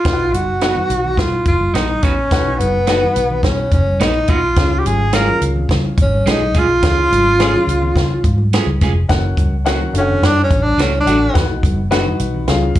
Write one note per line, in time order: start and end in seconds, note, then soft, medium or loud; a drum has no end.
0.00 0.35 F4 medium
0.05 0.33 B1 medium
0.05 0.86 B2 medium
0.05 0.48 D#4 medium
0.05 0.48 F#4 medium
0.05 0.48 B4 medium
0.05 0.12 F5 medium
0.05 kick loud
0.05 snare loud
0.05 closed hi-hat medium
0.13 0.52 F#5 medium
0.33 0.77 F#1 medium
0.33 1.20 F#4 medium
0.33 closed hi-hat medium
0.33 muted conga soft
0.33 high conga medium
0.61 0.75 B3 medium
0.61 1.47 D#4 medium
0.61 0.75 D#4 medium
0.61 1.47 F#4 medium
0.61 0.75 F#4 medium
0.61 1.47 B4 medium
0.61 0.75 B4 medium
0.61 1.47 F#5 medium
0.61 snare loud
0.61 closed hi-hat medium
0.61 muted conga soft
0.76 high conga medium
0.76 low conga medium
0.90 1.11 B1 medium
0.90 closed hi-hat medium
0.90 muted conga soft
1.05 low conga medium
1.17 1.39 B2 loud
1.17 1.46 F4 medium
1.17 kick medium
1.17 snare loud
1.17 closed hi-hat medium
1.17 high conga medium
1.45 1.67 F#1 medium
1.45 1.76 F4 medium
1.45 kick medium
1.45 closed hi-hat medium
1.45 muted conga soft
1.60 high conga medium
1.74 1.96 A#1 medium
1.74 1.87 B3 medium
1.74 2.05 D#4 medium
1.74 1.88 D#4 medium
1.74 1.88 F#4 medium
1.74 1.88 B4 medium
1.74 snare loud
1.74 closed hi-hat medium
1.89 high conga medium
2.03 2.25 A#1 medium
2.03 2.13 B3 medium
2.03 2.60 C#4 medium
2.03 2.13 D#4 medium
2.03 2.14 F#4 medium
2.03 2.14 B4 medium
2.03 kick medium
2.03 snare soft
2.03 closed hi-hat medium
2.31 2.53 B1 medium
2.31 3.12 B2 medium
2.31 2.74 D#4 medium
2.31 2.74 F#4 medium
2.31 2.74 B4 medium
2.31 2.74 F#5 medium
2.31 kick medium
2.31 snare loud
2.31 closed hi-hat medium
2.58 3.03 F#1 medium
2.58 3.43 B3 medium
2.58 closed hi-hat medium
2.58 muted conga soft
2.58 high conga medium
2.87 3.00 B3 medium
2.87 3.01 D#4 medium
2.87 3.73 D#4 medium
2.87 3.73 F#4 medium
2.87 3.01 F#4 medium
2.87 3.01 B4 medium
2.87 3.74 B4 medium
2.87 3.74 F#5 medium
2.87 snare medium
2.87 closed hi-hat medium
3.03 high conga medium
3.03 low conga medium
3.15 3.37 B1 medium
3.15 closed hi-hat medium
3.15 muted conga soft
3.30 low conga medium
3.43 3.73 B2 medium
3.43 3.70 C#4 medium
3.43 kick medium
3.43 snare loud
3.43 closed hi-hat medium
3.43 muted conga soft
3.43 high conga medium
3.72 3.94 F#1 medium
3.72 4.02 C#4 medium
3.72 kick medium
3.72 closed hi-hat medium
3.72 muted conga soft
3.87 high conga medium
4.00 4.22 A#1 medium
4.00 4.13 B3 medium
4.00 4.31 D#4 medium
4.00 4.14 D#4 medium
4.00 4.14 F#4 medium
4.00 4.14 B4 medium
4.00 snare loud
4.00 closed hi-hat medium
4.14 high conga medium
4.28 4.50 B1 loud
4.28 4.39 B3 medium
4.28 4.39 D#4 medium
4.28 4.80 F4 medium
4.28 4.39 F#4 medium
4.28 4.40 B4 medium
4.28 kick medium
4.28 closed hi-hat medium
4.28 muted conga soft
4.56 4.78 C#2 loud
4.56 5.38 C#3 medium
4.56 5.00 C#4 medium
4.56 5.00 F4 medium
4.56 5.00 G#4 medium
4.56 5.00 F5 medium
4.56 kick loud
4.56 snare loud
4.56 closed hi-hat loud
4.79 4.88 G4 medium
4.85 5.28 G#1 medium
4.85 5.16 G#4 medium
4.85 closed hi-hat medium
4.85 muted conga soft
4.85 high conga medium
5.13 5.26 G#3 medium
5.13 5.27 C#4 medium
5.13 5.99 C#4 medium
5.13 5.99 F4 medium
5.13 5.27 F4 medium
5.13 5.99 G#4 medium
5.13 5.27 G#4 loud
5.13 5.42 A#4 medium
5.13 6.00 F5 medium
5.13 snare loud
5.13 closed hi-hat loud
5.13 muted conga soft
5.27 high conga medium
5.27 low conga medium
5.41 5.63 C#2 medium
5.41 closed hi-hat medium
5.41 muted conga soft
5.56 low conga medium
5.69 5.91 C#3 loud
5.69 kick medium
5.69 snare loud
5.69 closed hi-hat medium
5.69 high conga medium
5.97 6.19 G#1 medium
5.97 kick loud
5.97 closed hi-hat medium
6.02 6.31 C#4 medium
6.13 high conga medium
6.26 6.48 B1 medium
6.26 6.39 G#3 medium
6.26 6.40 C#4 medium
6.26 6.60 D#4 medium
6.26 6.40 F4 medium
6.26 6.40 G#4 loud
6.26 snare loud
6.26 closed hi-hat medium
6.26 muted conga soft
6.41 high conga medium
6.54 6.76 B1 medium
6.54 6.65 G#3 medium
6.54 6.66 C#4 medium
6.54 6.66 F4 medium
6.54 6.66 G#4 medium
6.54 kick medium
6.54 closed hi-hat medium
6.54 muted conga soft
6.59 8.55 F4 loud
6.82 7.04 C#2 loud
6.82 7.64 C#3 medium
6.82 7.26 C#4 medium
6.82 7.26 F4 medium
6.82 7.26 G#4 medium
6.82 7.26 F5 medium
6.82 kick loud
6.82 snare loud
6.82 closed hi-hat medium
6.82 muted conga soft
6.82 low conga medium
7.10 7.54 G#1 medium
7.10 closed hi-hat medium
7.10 muted conga soft
7.10 high conga medium
7.39 7.53 G#3 medium
7.39 8.25 C#4 loud
7.39 7.53 C#4 medium
7.39 8.25 F4 medium
7.39 7.53 F4 medium
7.39 8.25 G#4 medium
7.39 7.54 G#4 medium
7.39 8.25 F5 loud
7.39 snare loud
7.39 closed hi-hat medium
7.39 muted conga soft
7.54 high conga medium
7.54 low conga medium
7.67 7.89 C#2 medium
7.67 closed hi-hat medium
7.82 low conga medium
7.95 8.17 C#3 medium
7.95 kick medium
7.95 snare loud
7.95 closed hi-hat medium
7.95 high conga medium
8.24 8.57 G#2 medium
8.24 kick medium
8.24 closed hi-hat medium
8.24 muted conga soft
8.38 high conga medium
8.53 8.66 G#3 medium
8.53 8.66 C#4 loud
8.53 8.66 F4 medium
8.53 8.67 G#4 loud
8.53 snare loud
8.53 closed hi-hat medium
8.66 8.83 C#2 medium
8.66 high conga medium
8.81 9.03 F1 loud
8.81 8.92 G#3 medium
8.81 8.92 C#4 medium
8.81 8.92 F4 medium
8.81 8.92 G#4 medium
8.81 kick medium
8.81 snare soft
8.81 closed hi-hat medium
8.81 muted conga soft
9.09 9.31 F#1 loud
9.09 9.51 C#4 medium
9.09 9.52 F#4 medium
9.09 9.52 A#4 medium
9.09 9.52 F#5 loud
9.09 kick loud
9.09 snare loud
9.09 closed hi-hat medium
9.09 low conga medium
9.37 9.80 C#2 medium
9.37 kick medium
9.37 closed hi-hat medium
9.37 muted conga soft
9.37 high conga medium
9.64 9.79 F#3 medium
9.64 9.79 A#3 medium
9.64 9.93 C#4 medium
9.64 9.79 C#4 medium
9.64 9.92 F#4 medium
9.64 9.80 F#4 medium
9.64 9.94 A#4 medium
9.64 9.94 F#5 loud
9.64 snare loud
9.64 closed hi-hat medium
9.81 high conga medium
9.81 low conga medium
9.93 10.15 F#1 medium
9.93 10.84 D4 medium
9.93 10.84 F#4 medium
9.93 10.84 A4 medium
9.93 10.00 F5 medium
9.93 closed hi-hat medium
9.98 10.27 C#4 medium
9.98 10.87 F#5 medium
10.09 low conga medium
10.22 10.44 F#2 medium
10.22 10.43 D4 loud
10.22 snare loud
10.22 closed hi-hat medium
10.22 high conga medium
10.44 10.64 C#4 loud
10.50 10.72 A1 medium
10.50 kick medium
10.50 closed hi-hat medium
10.50 high conga soft
10.63 10.83 D4 loud
10.63 high conga medium
10.78 10.99 C#2 medium
10.78 10.92 F#3 medium
10.78 10.92 A3 medium
10.78 10.92 D4 medium
10.78 10.92 F#4 medium
10.78 snare loud
10.78 closed hi-hat medium
10.82 10.99 C#4 medium
10.95 high conga medium
11.01 11.52 D4 medium
11.06 11.28 A1 medium
11.06 11.17 F#3 medium
11.06 11.18 A3 medium
11.06 11.28 D4 medium
11.06 11.18 D4 medium
11.06 11.28 F#4 medium
11.06 11.18 F#4 medium
11.06 11.28 A4 soft
11.06 11.28 F#5 medium
11.06 closed hi-hat medium
11.33 11.57 B1 loud
11.33 12.15 B2 medium
11.33 11.76 D#4 medium
11.33 11.77 F#4 medium
11.33 11.77 B4 medium
11.33 11.77 F#5 medium
11.33 kick loud
11.33 snare loud
11.33 closed hi-hat medium
11.33 muted conga soft
11.33 low conga medium
11.63 12.06 F#1 medium
11.63 kick medium
11.63 closed hi-hat medium
11.63 muted conga soft
11.63 high conga medium
11.90 12.04 F#3 medium
11.90 12.05 B3 medium
11.90 11.97 D4 medium
11.90 12.05 D#4 medium
11.90 12.48 F#4 medium
11.90 12.05 F#4 medium
11.90 12.47 B4 medium
11.90 12.48 F#5 loud
11.90 snare loud
11.90 closed hi-hat medium
11.90 muted conga soft
11.97 12.50 D#4 medium
12.06 high conga medium
12.06 low conga medium
12.20 12.41 B1 medium
12.20 closed hi-hat medium
12.20 muted conga soft
12.34 low conga medium
12.47 12.69 C#2 medium
12.47 12.79 C#3 medium
12.47 12.79 C#4 medium
12.47 12.79 F4 medium
12.47 12.79 G#4 medium
12.47 12.79 F5 loud
12.47 snare loud
12.47 closed hi-hat medium
12.47 muted conga soft
12.47 high conga medium
12.75 12.79 G#1 medium
12.75 kick medium
12.75 closed hi-hat medium